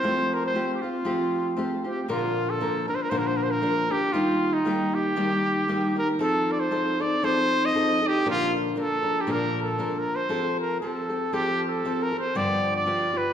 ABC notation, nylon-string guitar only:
X:1
M:2/4
L:1/8
Q:"Swing" 1/4=117
K:F
V:1 name="Nylon-string guitar"
[F,A,CFG]2 [A,CFG] [CFG] | [F,A,CFG]2 [A,CFG] [CFG] | [K:Bb] [B,,D,F,B,DB]2 [F,B,DB] [F,B,DB] | [B,,D,F,B,DB]2 [F,B,DB] [F,B,DB] |
[E,G,B,EG]2 [G,B,EG]2 | [E,G,B,EG]2 [G,B,EG] [B,EG] | [F,CEA]2 [F,CEA] [CEA] | [F,CEA]2 [F,CEA] [CEA] |
[B,,D,F,B,DB]2 [F,B,DB] [F,B,DB] | [B,,D,F,B,DB]2 [F,B,DB]2 | [K:F] [F,CGA]2 [F,CGA] [CGA] | [F,CGA]2 [F,CGA] [CGA] |
[G,,D,F,=B,FG]2 [F,B,FG] [F,B,FG] |]